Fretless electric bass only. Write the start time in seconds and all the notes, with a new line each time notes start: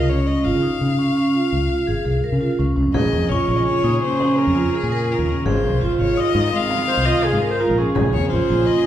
Already playing: C#2
0.46 G#1
0.55 C#3
0.81 C#3
1.52 C#2
1.88 G#1
2.05 C2
2.32 C#3
2.59 C#2
2.77 C#2
2.86 F2
2.94 A#1
3.13 F2
3.30 A#1
3.48 A#1
3.84 A#2
4.47 F2
4.83 A#2
5.19 D#2
5.46 G#1
5.64 C2
5.82 G#1
6.00 G#1
6.35 G#2
6.97 C2
7.33 G#2
7.70 A#1
7.96 A#1
8.14 F2
8.33 A#1
8.50 A#1